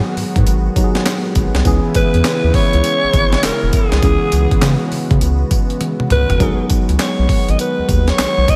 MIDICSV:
0, 0, Header, 1, 6, 480
1, 0, Start_track
1, 0, Tempo, 594059
1, 1335, Time_signature, 4, 2, 24, 8
1, 6916, End_track
2, 0, Start_track
2, 0, Title_t, "Alto saxophone"
2, 0, Program_c, 0, 65
2, 0, Note_on_c, 0, 68, 90
2, 141, Note_off_c, 0, 68, 0
2, 1583, Note_on_c, 0, 71, 112
2, 2062, Note_on_c, 0, 73, 124
2, 2075, Note_off_c, 0, 71, 0
2, 2778, Note_off_c, 0, 73, 0
2, 2785, Note_on_c, 0, 70, 99
2, 3024, Note_on_c, 0, 68, 93
2, 3036, Note_off_c, 0, 70, 0
2, 3979, Note_off_c, 0, 68, 0
2, 4944, Note_on_c, 0, 71, 124
2, 5387, Note_off_c, 0, 71, 0
2, 5667, Note_on_c, 0, 73, 84
2, 6059, Note_on_c, 0, 75, 87
2, 6071, Note_off_c, 0, 73, 0
2, 6138, Note_off_c, 0, 75, 0
2, 6143, Note_on_c, 0, 71, 98
2, 6539, Note_on_c, 0, 73, 105
2, 6551, Note_off_c, 0, 71, 0
2, 6865, Note_on_c, 0, 75, 108
2, 6877, Note_off_c, 0, 73, 0
2, 6916, Note_off_c, 0, 75, 0
2, 6916, End_track
3, 0, Start_track
3, 0, Title_t, "Tine electric piano"
3, 0, Program_c, 1, 4
3, 0, Control_c, 1, 64, 127
3, 0, Note_on_c, 1, 54, 74
3, 0, Note_on_c, 1, 59, 67
3, 0, Note_on_c, 1, 63, 67
3, 0, Note_on_c, 1, 68, 74
3, 589, Note_off_c, 1, 54, 0
3, 592, Note_off_c, 1, 59, 0
3, 595, Note_off_c, 1, 63, 0
3, 599, Note_off_c, 1, 68, 0
3, 617, Note_on_c, 1, 54, 61
3, 619, Note_on_c, 1, 59, 61
3, 622, Note_on_c, 1, 63, 54
3, 627, Note_on_c, 1, 67, 52
3, 679, Note_on_c, 1, 68, 68
3, 688, Note_off_c, 1, 67, 0
3, 1329, Note_off_c, 1, 59, 0
3, 1333, Note_on_c, 1, 52, 82
3, 1336, Note_off_c, 1, 54, 0
3, 1338, Note_off_c, 1, 63, 0
3, 1339, Note_on_c, 1, 59, 77
3, 1343, Note_off_c, 1, 68, 0
3, 1345, Note_on_c, 1, 61, 79
3, 1347, Control_c, 1, 64, 0
3, 1353, Note_on_c, 1, 68, 85
3, 1494, Control_c, 1, 64, 127
3, 3221, Note_off_c, 1, 52, 0
3, 3225, Note_off_c, 1, 59, 0
3, 3227, Note_off_c, 1, 61, 0
3, 3231, Note_off_c, 1, 68, 0
3, 3249, Note_on_c, 1, 52, 69
3, 3255, Note_on_c, 1, 59, 66
3, 3262, Note_on_c, 1, 61, 67
3, 3269, Note_on_c, 1, 68, 79
3, 5139, Note_off_c, 1, 52, 0
3, 5143, Note_off_c, 1, 59, 0
3, 5146, Note_off_c, 1, 61, 0
3, 5150, Note_off_c, 1, 68, 0
3, 5168, Note_on_c, 1, 54, 68
3, 5175, Note_on_c, 1, 59, 65
3, 5181, Note_on_c, 1, 63, 67
3, 5184, Control_c, 1, 64, 0
3, 5188, Note_on_c, 1, 68, 75
3, 5332, Control_c, 1, 64, 127
3, 6916, Note_off_c, 1, 54, 0
3, 6916, Note_off_c, 1, 59, 0
3, 6916, Note_off_c, 1, 63, 0
3, 6916, Note_off_c, 1, 68, 0
3, 6916, End_track
4, 0, Start_track
4, 0, Title_t, "Analog synth pad"
4, 0, Program_c, 2, 89
4, 0, Note_on_c, 2, 51, 79
4, 0, Note_on_c, 2, 54, 75
4, 0, Note_on_c, 2, 56, 69
4, 0, Note_on_c, 2, 59, 68
4, 0, Note_on_c, 2, 66, 90
4, 1302, Note_off_c, 2, 51, 0
4, 1302, Note_off_c, 2, 54, 0
4, 1302, Note_off_c, 2, 66, 0
4, 1340, Note_on_c, 2, 49, 76
4, 1340, Note_on_c, 2, 52, 72
4, 1340, Note_on_c, 2, 64, 80
4, 3238, Note_off_c, 2, 64, 0
4, 3254, Note_on_c, 2, 66, 83
4, 5145, Note_off_c, 2, 49, 0
4, 5145, Note_off_c, 2, 52, 0
4, 5171, Note_on_c, 2, 51, 80
4, 5172, Note_on_c, 2, 54, 70
4, 6916, Note_off_c, 2, 51, 0
4, 6916, Note_off_c, 2, 54, 0
4, 6916, Note_off_c, 2, 56, 0
4, 6916, Note_off_c, 2, 59, 0
4, 6916, Note_off_c, 2, 66, 0
4, 6916, End_track
5, 0, Start_track
5, 0, Title_t, "Analog synth bass"
5, 0, Program_c, 3, 38
5, 134, Note_on_c, 3, 44, 51
5, 196, Note_off_c, 3, 44, 0
5, 291, Note_on_c, 3, 44, 93
5, 354, Note_off_c, 3, 44, 0
5, 378, Note_on_c, 3, 32, 105
5, 556, Note_off_c, 3, 32, 0
5, 1096, Note_on_c, 3, 32, 97
5, 1211, Note_off_c, 3, 32, 0
5, 1248, Note_on_c, 3, 36, 89
5, 1313, Note_off_c, 3, 36, 0
5, 1336, Note_on_c, 3, 37, 113
5, 1451, Note_off_c, 3, 37, 0
5, 1732, Note_on_c, 3, 40, 86
5, 1795, Note_off_c, 3, 40, 0
5, 1970, Note_on_c, 3, 39, 90
5, 2034, Note_off_c, 3, 39, 0
5, 2212, Note_on_c, 3, 37, 101
5, 2275, Note_off_c, 3, 37, 0
5, 2451, Note_on_c, 3, 32, 50
5, 2485, Note_off_c, 3, 32, 0
5, 2533, Note_on_c, 3, 32, 108
5, 2713, Note_off_c, 3, 32, 0
5, 2778, Note_on_c, 3, 28, 46
5, 2839, Note_off_c, 3, 28, 0
5, 2931, Note_on_c, 3, 28, 85
5, 2994, Note_off_c, 3, 28, 0
5, 3171, Note_on_c, 3, 36, 82
5, 3234, Note_off_c, 3, 36, 0
5, 3254, Note_on_c, 3, 37, 108
5, 3370, Note_off_c, 3, 37, 0
5, 3495, Note_on_c, 3, 37, 97
5, 3610, Note_off_c, 3, 37, 0
5, 3733, Note_on_c, 3, 49, 103
5, 3849, Note_off_c, 3, 49, 0
5, 3975, Note_on_c, 3, 49, 47
5, 4037, Note_off_c, 3, 49, 0
5, 4127, Note_on_c, 3, 49, 105
5, 4192, Note_off_c, 3, 49, 0
5, 4216, Note_on_c, 3, 37, 102
5, 4395, Note_off_c, 3, 37, 0
5, 4936, Note_on_c, 3, 37, 99
5, 5050, Note_off_c, 3, 37, 0
5, 5087, Note_on_c, 3, 31, 85
5, 5152, Note_off_c, 3, 31, 0
5, 5174, Note_on_c, 3, 32, 104
5, 5289, Note_off_c, 3, 32, 0
5, 5569, Note_on_c, 3, 37, 90
5, 5633, Note_off_c, 3, 37, 0
5, 5808, Note_on_c, 3, 35, 88
5, 5873, Note_off_c, 3, 35, 0
5, 6048, Note_on_c, 3, 32, 99
5, 6112, Note_off_c, 3, 32, 0
5, 6291, Note_on_c, 3, 39, 53
5, 6325, Note_off_c, 3, 39, 0
5, 6373, Note_on_c, 3, 39, 99
5, 6553, Note_off_c, 3, 39, 0
5, 6615, Note_on_c, 3, 35, 48
5, 6677, Note_off_c, 3, 35, 0
5, 6769, Note_on_c, 3, 35, 87
5, 6833, Note_off_c, 3, 35, 0
5, 6916, End_track
6, 0, Start_track
6, 0, Title_t, "Drums"
6, 138, Note_on_c, 9, 46, 71
6, 219, Note_off_c, 9, 46, 0
6, 290, Note_on_c, 9, 36, 99
6, 291, Note_on_c, 9, 42, 59
6, 371, Note_off_c, 9, 36, 0
6, 371, Note_off_c, 9, 42, 0
6, 376, Note_on_c, 9, 42, 80
6, 377, Note_on_c, 9, 54, 66
6, 457, Note_off_c, 9, 42, 0
6, 458, Note_off_c, 9, 54, 0
6, 615, Note_on_c, 9, 36, 89
6, 617, Note_on_c, 9, 42, 70
6, 617, Note_on_c, 9, 54, 61
6, 696, Note_off_c, 9, 36, 0
6, 697, Note_off_c, 9, 54, 0
6, 698, Note_off_c, 9, 42, 0
6, 768, Note_on_c, 9, 42, 47
6, 769, Note_on_c, 9, 38, 67
6, 848, Note_off_c, 9, 42, 0
6, 850, Note_off_c, 9, 38, 0
6, 854, Note_on_c, 9, 42, 84
6, 855, Note_on_c, 9, 54, 101
6, 856, Note_on_c, 9, 38, 126
6, 859, Note_on_c, 9, 39, 96
6, 935, Note_off_c, 9, 42, 0
6, 936, Note_off_c, 9, 54, 0
6, 937, Note_off_c, 9, 38, 0
6, 939, Note_off_c, 9, 39, 0
6, 1093, Note_on_c, 9, 54, 64
6, 1096, Note_on_c, 9, 36, 94
6, 1096, Note_on_c, 9, 42, 71
6, 1174, Note_off_c, 9, 54, 0
6, 1177, Note_off_c, 9, 36, 0
6, 1177, Note_off_c, 9, 42, 0
6, 1250, Note_on_c, 9, 38, 76
6, 1250, Note_on_c, 9, 42, 50
6, 1330, Note_off_c, 9, 42, 0
6, 1331, Note_off_c, 9, 38, 0
6, 1333, Note_on_c, 9, 42, 57
6, 1334, Note_on_c, 9, 54, 65
6, 1335, Note_on_c, 9, 36, 103
6, 1414, Note_off_c, 9, 42, 0
6, 1414, Note_off_c, 9, 54, 0
6, 1416, Note_off_c, 9, 36, 0
6, 1572, Note_on_c, 9, 42, 75
6, 1573, Note_on_c, 9, 54, 68
6, 1577, Note_on_c, 9, 36, 92
6, 1652, Note_off_c, 9, 42, 0
6, 1654, Note_off_c, 9, 54, 0
6, 1658, Note_off_c, 9, 36, 0
6, 1729, Note_on_c, 9, 42, 51
6, 1810, Note_off_c, 9, 42, 0
6, 1811, Note_on_c, 9, 54, 83
6, 1812, Note_on_c, 9, 42, 66
6, 1813, Note_on_c, 9, 38, 110
6, 1815, Note_on_c, 9, 39, 76
6, 1892, Note_off_c, 9, 54, 0
6, 1893, Note_off_c, 9, 38, 0
6, 1893, Note_off_c, 9, 42, 0
6, 1896, Note_off_c, 9, 39, 0
6, 2052, Note_on_c, 9, 36, 102
6, 2053, Note_on_c, 9, 46, 72
6, 2133, Note_off_c, 9, 36, 0
6, 2133, Note_off_c, 9, 46, 0
6, 2208, Note_on_c, 9, 42, 56
6, 2288, Note_off_c, 9, 42, 0
6, 2293, Note_on_c, 9, 42, 92
6, 2293, Note_on_c, 9, 54, 65
6, 2374, Note_off_c, 9, 42, 0
6, 2374, Note_off_c, 9, 54, 0
6, 2533, Note_on_c, 9, 36, 88
6, 2533, Note_on_c, 9, 42, 72
6, 2533, Note_on_c, 9, 54, 60
6, 2614, Note_off_c, 9, 36, 0
6, 2614, Note_off_c, 9, 42, 0
6, 2614, Note_off_c, 9, 54, 0
6, 2686, Note_on_c, 9, 42, 43
6, 2687, Note_on_c, 9, 38, 71
6, 2766, Note_off_c, 9, 42, 0
6, 2768, Note_off_c, 9, 38, 0
6, 2772, Note_on_c, 9, 42, 79
6, 2773, Note_on_c, 9, 38, 126
6, 2773, Note_on_c, 9, 54, 104
6, 2776, Note_on_c, 9, 39, 101
6, 2853, Note_off_c, 9, 42, 0
6, 2853, Note_off_c, 9, 54, 0
6, 2854, Note_off_c, 9, 38, 0
6, 2857, Note_off_c, 9, 39, 0
6, 3012, Note_on_c, 9, 54, 68
6, 3015, Note_on_c, 9, 36, 97
6, 3015, Note_on_c, 9, 42, 72
6, 3093, Note_off_c, 9, 54, 0
6, 3095, Note_off_c, 9, 36, 0
6, 3096, Note_off_c, 9, 42, 0
6, 3166, Note_on_c, 9, 42, 54
6, 3167, Note_on_c, 9, 38, 73
6, 3247, Note_off_c, 9, 42, 0
6, 3248, Note_off_c, 9, 38, 0
6, 3252, Note_on_c, 9, 42, 64
6, 3252, Note_on_c, 9, 54, 67
6, 3253, Note_on_c, 9, 36, 108
6, 3333, Note_off_c, 9, 42, 0
6, 3333, Note_off_c, 9, 54, 0
6, 3334, Note_off_c, 9, 36, 0
6, 3490, Note_on_c, 9, 42, 73
6, 3491, Note_on_c, 9, 54, 65
6, 3571, Note_off_c, 9, 42, 0
6, 3572, Note_off_c, 9, 54, 0
6, 3647, Note_on_c, 9, 36, 102
6, 3648, Note_on_c, 9, 42, 52
6, 3728, Note_off_c, 9, 36, 0
6, 3729, Note_off_c, 9, 42, 0
6, 3730, Note_on_c, 9, 54, 86
6, 3731, Note_on_c, 9, 38, 105
6, 3731, Note_on_c, 9, 42, 66
6, 3734, Note_on_c, 9, 39, 86
6, 3811, Note_off_c, 9, 42, 0
6, 3811, Note_off_c, 9, 54, 0
6, 3812, Note_off_c, 9, 38, 0
6, 3815, Note_off_c, 9, 39, 0
6, 3973, Note_on_c, 9, 46, 66
6, 4054, Note_off_c, 9, 46, 0
6, 4127, Note_on_c, 9, 36, 101
6, 4127, Note_on_c, 9, 42, 55
6, 4207, Note_off_c, 9, 42, 0
6, 4208, Note_off_c, 9, 36, 0
6, 4211, Note_on_c, 9, 42, 87
6, 4212, Note_on_c, 9, 54, 68
6, 4292, Note_off_c, 9, 42, 0
6, 4293, Note_off_c, 9, 54, 0
6, 4451, Note_on_c, 9, 42, 72
6, 4451, Note_on_c, 9, 54, 67
6, 4452, Note_on_c, 9, 36, 91
6, 4532, Note_off_c, 9, 42, 0
6, 4532, Note_off_c, 9, 54, 0
6, 4533, Note_off_c, 9, 36, 0
6, 4606, Note_on_c, 9, 42, 45
6, 4687, Note_off_c, 9, 42, 0
6, 4692, Note_on_c, 9, 42, 85
6, 4692, Note_on_c, 9, 48, 70
6, 4772, Note_off_c, 9, 48, 0
6, 4773, Note_off_c, 9, 42, 0
6, 4847, Note_on_c, 9, 47, 71
6, 4928, Note_off_c, 9, 47, 0
6, 4932, Note_on_c, 9, 45, 100
6, 4934, Note_on_c, 9, 42, 69
6, 5012, Note_off_c, 9, 45, 0
6, 5014, Note_off_c, 9, 42, 0
6, 5088, Note_on_c, 9, 42, 52
6, 5088, Note_on_c, 9, 43, 92
6, 5169, Note_off_c, 9, 42, 0
6, 5169, Note_off_c, 9, 43, 0
6, 5172, Note_on_c, 9, 42, 59
6, 5173, Note_on_c, 9, 36, 118
6, 5173, Note_on_c, 9, 54, 67
6, 5253, Note_off_c, 9, 42, 0
6, 5254, Note_off_c, 9, 36, 0
6, 5254, Note_off_c, 9, 54, 0
6, 5410, Note_on_c, 9, 42, 78
6, 5412, Note_on_c, 9, 54, 70
6, 5415, Note_on_c, 9, 36, 90
6, 5491, Note_off_c, 9, 42, 0
6, 5492, Note_off_c, 9, 54, 0
6, 5496, Note_off_c, 9, 36, 0
6, 5567, Note_on_c, 9, 42, 55
6, 5648, Note_off_c, 9, 42, 0
6, 5649, Note_on_c, 9, 54, 87
6, 5650, Note_on_c, 9, 42, 67
6, 5651, Note_on_c, 9, 38, 104
6, 5653, Note_on_c, 9, 39, 84
6, 5730, Note_off_c, 9, 54, 0
6, 5731, Note_off_c, 9, 38, 0
6, 5731, Note_off_c, 9, 42, 0
6, 5734, Note_off_c, 9, 39, 0
6, 5890, Note_on_c, 9, 36, 96
6, 5892, Note_on_c, 9, 46, 76
6, 5971, Note_off_c, 9, 36, 0
6, 5973, Note_off_c, 9, 46, 0
6, 6048, Note_on_c, 9, 42, 57
6, 6129, Note_off_c, 9, 42, 0
6, 6132, Note_on_c, 9, 42, 88
6, 6133, Note_on_c, 9, 54, 70
6, 6213, Note_off_c, 9, 42, 0
6, 6214, Note_off_c, 9, 54, 0
6, 6372, Note_on_c, 9, 36, 95
6, 6374, Note_on_c, 9, 42, 75
6, 6374, Note_on_c, 9, 54, 67
6, 6453, Note_off_c, 9, 36, 0
6, 6455, Note_off_c, 9, 42, 0
6, 6455, Note_off_c, 9, 54, 0
6, 6525, Note_on_c, 9, 42, 46
6, 6527, Note_on_c, 9, 38, 68
6, 6606, Note_off_c, 9, 42, 0
6, 6608, Note_off_c, 9, 38, 0
6, 6614, Note_on_c, 9, 42, 87
6, 6614, Note_on_c, 9, 54, 101
6, 6615, Note_on_c, 9, 38, 126
6, 6618, Note_on_c, 9, 39, 97
6, 6694, Note_off_c, 9, 42, 0
6, 6695, Note_off_c, 9, 54, 0
6, 6696, Note_off_c, 9, 38, 0
6, 6699, Note_off_c, 9, 39, 0
6, 6852, Note_on_c, 9, 54, 64
6, 6855, Note_on_c, 9, 36, 94
6, 6856, Note_on_c, 9, 42, 74
6, 6916, Note_off_c, 9, 36, 0
6, 6916, Note_off_c, 9, 42, 0
6, 6916, Note_off_c, 9, 54, 0
6, 6916, End_track
0, 0, End_of_file